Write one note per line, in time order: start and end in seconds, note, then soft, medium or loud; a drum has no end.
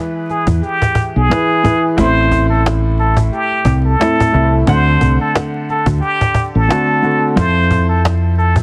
0.00 1.16 E3 loud
0.00 1.16 G#3 medium
0.00 1.16 E4 medium
0.00 1.16 B4 loud
0.30 0.46 G#4 medium
0.30 cajon slap soft
0.47 0.60 E2 loud
0.47 cajon bass medium
0.62 1.12 G4 medium
0.62 cajon slap medium
0.82 cajon bass medium
0.95 cajon bass loud
1.16 1.28 B1 medium
1.16 1.94 G#4 medium
1.30 1.61 E3 medium
1.30 1.61 E4 medium
1.30 1.62 G#4 medium
1.30 1.62 B4 medium
1.30 cajon slap loud
1.30 cajon slap medium
1.64 1.95 E3 medium
1.64 1.95 E4 medium
1.64 1.96 G#4 medium
1.64 1.96 B4 medium
1.64 cajon bass medium
1.97 3.29 A1 loud
1.97 3.85 A2 medium
1.97 3.85 A3 medium
1.97 3.85 C4 loud
1.97 3.86 E4 loud
1.97 2.47 C5 loud
1.97 cajon bass loud
2.31 cajon bass medium
2.50 2.63 A4 medium
2.66 cajon slap loud
3.00 3.16 A4 medium
3.00 cajon slap medium
3.17 cajon bass medium
3.33 3.82 G4 loud
3.33 cajon slap medium
3.51 cajon slap soft
3.65 3.94 C2 medium
3.65 cajon bass medium
3.85 4.63 A4 medium
3.99 4.31 A2 medium
3.99 4.31 A3 medium
3.99 4.31 C4 medium
3.99 4.32 E4 medium
3.99 cajon slap loud
3.99 cajon slap medium
4.20 cajon bass loud
4.32 4.63 C2 loud
4.32 4.64 A2 medium
4.32 4.64 A3 medium
4.32 4.65 C4 medium
4.32 4.65 E4 medium
4.66 4.96 D2 loud
4.66 6.55 D3 loud
4.66 6.55 A3 medium
4.66 6.56 C4 medium
4.66 5.16 C5 loud
4.66 6.56 F#5 loud
4.66 cajon bass loud
5.01 5.17 C2 medium
5.01 cajon bass medium
5.21 5.34 A4 medium
5.35 cajon slap loud
5.69 5.86 A4 medium
5.69 cajon slap soft
5.86 5.99 D2 medium
5.86 cajon bass medium
6.01 6.51 G4 loud
6.01 cajon slap medium
6.21 cajon bass medium
6.34 cajon bass loud
6.55 6.68 A1 medium
6.55 7.34 A4 medium
6.68 7.00 D3 medium
6.68 7.00 A3 medium
6.68 7.01 C4 medium
6.68 7.01 F#4 medium
6.68 cajon slap loud
6.68 cajon slap medium
7.02 7.34 D3 medium
7.02 7.34 A3 medium
7.02 7.34 C4 medium
7.02 7.35 F#4 medium
7.02 cajon slap soft
7.36 8.63 F2 loud
7.36 8.63 F3 loud
7.36 8.63 C4 medium
7.36 8.63 E4 medium
7.36 8.63 A4 loud
7.36 7.86 C5 loud
7.36 cajon bass loud
7.71 cajon bass medium
7.89 8.03 A4 medium
8.05 cajon slap loud
8.05 cajon slap medium
8.38 8.55 A4 medium
8.38 cajon slap medium
8.56 cajon bass medium